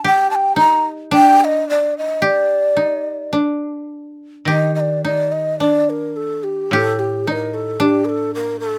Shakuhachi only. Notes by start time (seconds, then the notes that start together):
0.05 G5
0.31 A5
0.35 G5
0.56 A#5
1.14 G5
1.40 D#5 G5
1.70 D5
1.98 D#5
2.24 D5
4.48 D#5
4.75 D#5
4.80 D5
5.04 D5
5.32 D#5
5.60 D5
5.90 A#4
6.16 A4
6.43 G4
6.74 A4
6.99 G4
7.28 D5
7.32 A#4
7.54 A4
7.81 G4
8.05 A#4
8.09 A4
8.35 A#4
8.60 A4